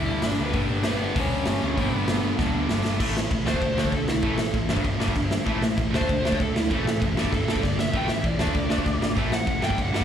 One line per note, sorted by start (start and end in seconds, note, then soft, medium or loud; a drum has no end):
0.00 0.18 D2 medium
0.00 0.53 G2 medium
0.00 0.53 D3 medium
0.00 0.55 G3 medium
0.00 0.23 E4 medium
0.00 0.25 E5 medium
0.06 0.20 G2 medium
0.06 0.20 D3 medium
0.06 0.21 G3 medium
0.06 0.21 B3 medium
0.06 0.22 D4 medium
0.20 0.36 G1 medium
0.20 0.38 G2 loud
0.20 0.37 D3 loud
0.20 0.37 G3 loud
0.20 0.36 B3 loud
0.20 0.36 D4 loud
0.20 snare loud
0.20 open hi-hat medium
0.26 0.32 D4 medium
0.26 0.31 D5 loud
0.36 0.52 D2 medium
0.36 0.53 G2 medium
0.36 0.53 D3 medium
0.36 0.54 G3 medium
0.36 0.54 B3 medium
0.36 0.55 D4 medium
0.42 0.55 B3 medium
0.42 0.55 B4 medium
0.53 0.67 G1 medium
0.53 1.13 G2 medium
0.53 0.71 G2 medium
0.53 1.15 D3 loud
0.53 0.70 D3 loud
0.53 0.70 G3 loud
0.53 1.15 G3 loud
0.53 0.69 B3 loud
0.53 0.69 D4 loud
0.53 kick medium
0.53 open hi-hat medium
0.69 0.83 G1 medium
0.69 0.85 G2 medium
0.69 0.85 D3 medium
0.69 0.86 G3 medium
0.69 0.86 B3 medium
0.69 0.87 D4 medium
0.83 1.11 G1 medium
0.83 1.01 G2 loud
0.83 1.00 D3 loud
0.83 1.01 G3 loud
0.83 0.99 B3 loud
0.83 0.98 D4 loud
0.83 snare loud
0.83 open hi-hat medium
0.88 1.15 B3 medium
0.88 1.18 B4 medium
1.00 1.14 G2 medium
1.00 1.15 D3 medium
1.00 1.15 G3 loud
1.00 1.15 B3 medium
1.00 1.15 D4 medium
1.15 1.41 D2 loud
1.15 1.76 G2 medium
1.15 1.31 G2 loud
1.15 1.30 D3 loud
1.15 1.77 D3 medium
1.15 1.29 G3 loud
1.15 1.77 G3 medium
1.15 1.30 B3 loud
1.15 1.29 D4 loud
1.15 kick loud
1.15 open hi-hat medium
1.19 1.75 C#4 medium
1.19 1.81 C#5 medium
1.30 1.45 G2 medium
1.30 1.46 D3 medium
1.30 1.47 G3 medium
1.30 1.47 B3 medium
1.30 1.47 D4 medium
1.46 1.59 G1 medium
1.46 1.62 G2 loud
1.46 1.61 D3 loud
1.46 1.61 G3 loud
1.46 1.61 B3 loud
1.46 1.61 D4 loud
1.46 snare loud
1.46 open hi-hat medium
1.62 1.75 D2 medium
1.62 1.76 G2 medium
1.62 1.76 D3 medium
1.62 1.77 G3 loud
1.62 1.77 B3 loud
1.62 1.78 D4 loud
1.77 1.90 G1 loud
1.77 2.38 G2 medium
1.77 1.93 G2 loud
1.77 1.93 D3 medium
1.77 2.38 D3 loud
1.77 1.92 G3 loud
1.77 2.39 G3 medium
1.77 1.92 B3 loud
1.77 2.67 B3 medium
1.77 1.92 D4 loud
1.77 kick medium
1.77 open hi-hat medium
1.81 2.68 B4 medium
1.91 2.05 G1 medium
1.91 2.05 G2 medium
1.91 2.05 D3 medium
1.91 2.05 G3 medium
1.91 2.06 B3 medium
1.91 2.06 D4 medium
2.06 2.33 G1 medium
2.06 2.21 G2 loud
2.06 2.21 D3 loud
2.06 2.21 G3 loud
2.06 2.20 B3 loud
2.06 2.19 D4 loud
2.06 snare loud
2.06 open hi-hat medium
2.20 2.35 G2 medium
2.20 2.35 D3 medium
2.20 2.36 G3 medium
2.20 2.35 B3 medium
2.20 2.36 D4 loud
2.36 2.65 D2 loud
2.36 2.53 G2 loud
2.36 3.00 G2 medium
2.36 2.53 D3 loud
2.36 2.52 G3 loud
2.36 2.51 B3 loud
2.36 2.51 D4 loud
2.36 kick loud
2.36 snare medium
2.40 2.99 D3 medium
2.40 2.99 G3 medium
2.52 2.67 G2 medium
2.52 2.67 D3 medium
2.52 2.68 G3 medium
2.52 2.68 B3 loud
2.52 2.69 D4 medium
2.68 2.82 G1 medium
2.68 2.85 G2 loud
2.68 2.84 D3 loud
2.68 2.84 G3 loud
2.68 2.84 B3 loud
2.68 2.83 D4 loud
2.68 snare loud
2.84 2.98 G1 medium
2.84 2.98 G2 medium
2.84 2.99 D3 medium
2.84 3.00 G3 medium
2.84 2.99 B3 loud
2.84 2.99 D4 loud
2.84 snare medium
2.99 3.11 A1 medium
2.99 3.45 A2 medium
2.99 3.14 A2 loud
2.99 3.43 E3 medium
2.99 3.14 E3 medium
2.99 3.15 A3 loud
2.99 3.44 A3 medium
2.99 3.45 C#4 medium
2.99 3.46 E4 loud
2.99 3.46 A4 medium
2.99 kick medium
2.99 crash loud
2.99 crash soft
3.15 3.26 A1 medium
3.15 3.30 A2 medium
3.15 3.30 E3 medium
3.15 snare loud
3.31 3.42 C#2 medium
3.31 3.45 A2 medium
3.31 3.46 E3 medium
3.31 kick loud
3.31 crash medium
3.44 3.57 D2 medium
3.44 4.21 D3 medium
3.44 3.61 D3 medium
3.44 4.21 A3 loud
3.44 3.61 A3 medium
3.44 4.22 D4 loud
3.44 3.62 D4 loud
3.44 4.23 F#4 loud
3.44 4.23 A4 loud
3.44 3.92 C5 loud
3.44 snare loud
3.54 kick medium
3.61 3.72 D2 medium
3.61 3.76 D3 medium
3.61 3.76 A3 medium
3.61 kick loud
3.61 crash medium
3.77 3.88 D2 medium
3.77 3.92 D3 medium
3.77 3.93 A3 medium
3.77 3.93 D4 medium
3.77 snare loud
3.85 kick medium
3.92 4.03 D2 medium
3.92 4.08 D3 medium
3.92 4.08 A3 medium
3.92 4.09 A4 medium
3.92 kick loud
3.92 crash medium
4.08 4.19 B1 medium
4.08 4.24 D3 medium
4.08 4.23 A3 medium
4.08 4.23 E4 medium
4.08 snare loud
4.21 4.34 A1 medium
4.21 4.67 A2 medium
4.21 4.68 E3 medium
4.21 4.68 A3 medium
4.21 4.69 C#4 medium
4.21 4.69 E4 loud
4.21 4.53 A4 medium
4.21 kick loud
4.21 crash medium
4.25 4.38 A2 medium
4.25 4.39 E3 loud
4.25 4.39 A3 loud
4.38 4.49 A1 medium
4.38 4.53 A2 medium
4.38 4.53 E3 medium
4.38 snare loud
4.54 4.65 A1 medium
4.54 4.69 A2 medium
4.54 4.69 E3 medium
4.54 kick loud
4.54 crash medium
4.69 4.80 G1 medium
4.69 5.44 G2 medium
4.69 4.84 G2 medium
4.69 5.45 D3 medium
4.69 4.84 D3 medium
4.69 5.45 G3 loud
4.69 4.85 G3 medium
4.69 5.46 B3 loud
4.69 5.46 D4 loud
4.69 snare loud
4.77 kick medium
4.84 4.96 G1 loud
4.84 4.98 G2 medium
4.84 4.99 D3 loud
4.84 kick loud
4.84 crash medium
5.00 5.11 G1 medium
5.00 5.15 G2 medium
5.00 5.15 D3 loud
5.00 5.15 G3 loud
5.00 snare loud
5.08 kick loud
5.15 5.37 G1 medium
5.15 5.30 G2 medium
5.15 5.30 D3 medium
5.15 kick loud
5.15 crash medium
5.31 5.45 G2 medium
5.31 5.45 D3 medium
5.31 snare loud
5.45 5.58 A1 medium
5.45 5.91 A2 medium
5.45 5.60 A2 loud
5.45 5.91 E3 medium
5.45 5.60 E3 medium
5.45 5.91 A3 loud
5.45 5.61 A3 loud
5.45 5.92 C#4 loud
5.45 5.92 E4 loud
5.45 kick loud
5.45 crash soft
5.61 5.73 A1 medium
5.61 5.76 A2 medium
5.61 5.76 E3 medium
5.61 snare loud
5.77 5.89 A1 medium
5.77 5.91 A2 medium
5.77 5.92 E3 medium
5.77 kick loud
5.77 crash medium
5.91 6.04 D2 medium
5.91 6.68 D3 medium
5.91 6.08 D3 medium
5.91 6.69 A3 loud
5.91 6.08 A3 medium
5.91 6.70 D4 loud
5.91 6.70 F#4 medium
5.91 snare loud
5.95 6.09 D4 loud
5.95 6.39 C5 loud
6.01 kick medium
6.09 6.20 D2 medium
6.09 6.23 D3 medium
6.09 6.24 A3 medium
6.09 kick loud
6.09 crash medium
6.25 6.36 D2 medium
6.25 6.39 D3 medium
6.25 6.40 A3 loud
6.25 6.40 D4 loud
6.25 snare loud
6.32 kick loud
6.40 6.51 D2 medium
6.40 6.54 D3 medium
6.40 6.54 A3 medium
6.40 6.56 A4 medium
6.40 kick loud
6.40 crash medium
6.56 6.67 D2 medium
6.56 6.70 D3 medium
6.56 6.70 A3 medium
6.56 6.71 E4 medium
6.56 snare loud
6.70 6.81 A1 medium
6.70 7.15 A2 medium
6.70 6.86 A2 medium
6.70 7.16 E3 medium
6.70 6.86 E3 loud
6.70 7.16 A3 loud
6.70 7.16 C#4 medium
6.70 7.16 E4 loud
6.70 7.01 A4 loud
6.70 kick loud
6.70 crash medium
6.74 6.87 A3 loud
6.85 6.96 A1 medium
6.85 7.00 A2 medium
6.85 7.01 E3 medium
6.85 snare loud
7.02 7.13 F#1 medium
7.02 7.15 A2 medium
7.02 7.16 E3 medium
7.02 kick loud
7.02 crash medium
7.16 7.28 G1 medium
7.16 7.93 G2 medium
7.16 7.32 G2 medium
7.16 7.93 D3 loud
7.16 7.32 D3 medium
7.16 7.94 G3 loud
7.16 7.32 G3 medium
7.16 7.94 B3 loud
7.16 7.94 D4 loud
7.16 snare loud
7.25 kick medium
7.32 7.43 G1 loud
7.32 7.47 G2 medium
7.32 7.47 D3 medium
7.32 7.62 A4 medium
7.32 kick loud
7.32 crash medium
7.48 7.59 G1 medium
7.48 7.63 G2 medium
7.48 7.63 D3 loud
7.48 7.63 G3 loud
7.48 snare loud
7.56 kick medium
7.63 7.85 G1 medium
7.63 7.78 G2 medium
7.63 7.78 D3 medium
7.63 7.78 D5 medium
7.63 kick loud
7.63 crash medium
7.79 7.93 G2 medium
7.79 7.93 D3 medium
7.79 7.94 E5 medium
7.79 snare loud
7.93 8.04 A1 medium
7.93 8.39 A2 medium
7.93 8.08 A2 medium
7.93 8.38 E3 loud
7.93 8.09 E3 medium
7.93 8.38 A3 loud
7.93 8.09 A3 loud
7.93 8.40 C#4 loud
7.93 8.40 E4 medium
7.93 8.10 G5 medium
7.93 kick medium
7.93 crash medium
8.08 8.19 A1 medium
8.08 8.23 A2 medium
8.08 8.24 E3 medium
8.08 8.26 E5 medium
8.08 snare loud
8.24 8.35 A1 medium
8.24 8.39 A2 medium
8.24 8.39 E3 medium
8.24 9.15 D5 medium
8.24 kick loud
8.24 crash medium
8.38 8.50 D2 medium
8.38 9.15 D3 medium
8.38 8.54 D3 medium
8.38 9.15 A3 loud
8.38 8.55 A3 medium
8.38 8.55 D4 medium
8.38 9.17 D4 loud
8.38 9.17 F#4 medium
8.38 snare loud
8.47 kick medium
8.54 8.66 D2 medium
8.54 8.69 D3 medium
8.54 8.68 A3 medium
8.54 kick loud
8.54 crash medium
8.70 8.81 D2 medium
8.70 8.85 D3 medium
8.70 8.84 A3 loud
8.70 8.86 D4 loud
8.70 snare loud
8.78 kick medium
8.85 8.97 D2 medium
8.85 9.00 D3 medium
8.85 9.00 A3 medium
8.85 kick loud
8.85 crash medium
9.01 9.12 G#1 medium
9.01 9.16 D3 medium
9.01 9.16 A3 medium
9.01 snare loud
9.15 9.28 A1 loud
9.15 9.60 A2 loud
9.15 9.32 A2 medium
9.15 9.61 E3 loud
9.15 9.32 E3 loud
9.15 9.61 A3 loud
9.15 9.32 A3 loud
9.15 9.62 C#4 loud
9.15 9.62 E4 loud
9.15 kick loud
9.15 crash medium
9.31 9.42 A1 medium
9.31 9.46 A2 medium
9.31 9.46 E3 medium
9.31 9.63 F#5 loud
9.31 snare loud
9.47 9.58 A1 medium
9.47 9.61 A2 medium
9.47 9.62 E3 medium
9.47 kick loud
9.47 crash medium
9.60 9.74 G1 medium
9.60 10.04 G2 medium
9.60 9.77 G2 medium
9.60 10.04 D3 medium
9.60 9.77 D3 medium
9.60 10.04 G3 loud
9.60 9.78 G3 medium
9.60 10.04 B3 loud
9.60 10.04 D4 loud
9.60 snare loud
9.64 9.79 G5 loud
9.70 kick medium
9.78 9.89 G1 medium
9.78 9.91 G2 medium
9.78 9.92 D3 medium
9.78 kick loud
9.78 crash medium
9.82 10.04 F#5 medium
9.92 10.04 G1 medium
9.92 10.04 G2 medium
9.92 10.04 D3 loud
9.92 10.04 G3 loud
9.92 snare loud
10.01 kick medium